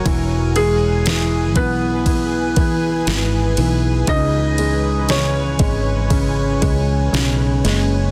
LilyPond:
<<
  \new Staff \with { instrumentName = "Ambient pad" } { \time 4/4 \key cis \dorian \tempo 4 = 60 << { <e gis''>1~ | <e gis''>1 | } \\ { <gis' b'>1 | cis''1 | } >> }
  \new Staff \with { instrumentName = "Grand piano" } { \time 4/4 \key cis \dorian r8 <gis gis'>4 <b b'>2~ <b b'>8 | <dis' dis''>4 <cis' cis''>2~ <cis' cis''>8 r8 | }
  \new Staff \with { instrumentName = "Grand piano" } { \clef bass \time 4/4 \key cis \dorian e8 e8 e8 e8 e8 e8 e8 e8 | cis8 gis8 cis8 gis8 cis8 gis8 cis8 gis8 | }
  \new Staff \with { instrumentName = "Fretless electric bass" } { \clef bass \time 4/4 \key cis \dorian e,,4. b,,4. gis,,8 b,,8 | cis,4. gis,,4 cis,8 b,,8 fis,,8 | }
  \new DrumStaff \with { instrumentName = "Drums" } \drummode { \time 4/4 <bd cymr>8 cymr8 <cymr sn>8 <bd cymr>8 <bd cymr>8 <bd cymr>8 <cymr sn>8 cymr8 | <bd cymr>8 cymr8 <cymr sn>8 <bd cymr>8 <bd cymr>8 <bd cymr>8 <cymr sn>8 <cymr sn>8 | }
>>